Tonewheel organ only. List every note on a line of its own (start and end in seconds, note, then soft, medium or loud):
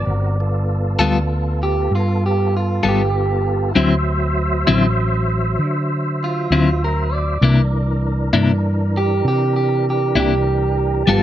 0.05 0.38 C4 medium
0.05 0.37 F#4 medium
0.05 0.38 A#4 medium
0.40 3.73 B3 medium
0.40 3.73 F4 medium
0.40 3.73 A4 medium
3.74 7.38 F#3 medium
3.74 7.37 C5 medium
3.74 7.38 E5 medium
7.41 11.04 E3 medium
7.41 11.03 D4 medium
7.41 11.03 A#4 medium
11.06 11.23 F3 medium
11.06 11.23 B3 medium
11.06 11.23 A5 medium